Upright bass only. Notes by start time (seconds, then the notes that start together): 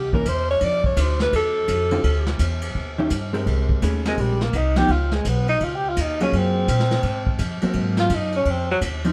Already playing: C2
0.26 E2
0.61 F2
0.96 D2
1.33 E2
1.68 F2
2.04 D2
2.39 E2
2.75 D#2
3.11 G2
3.46 C2
3.82 D#2
4.18 A#1
4.53 C2
4.89 C#2
5.25 B1
5.61 C#2
5.97 D#2
6.33 F#2
6.68 A#2
7.03 G#2
7.39 F2
7.63 muted upright bass stroke
7.75 G#2
8.10 F#2
8.45 F2
8.81 D#2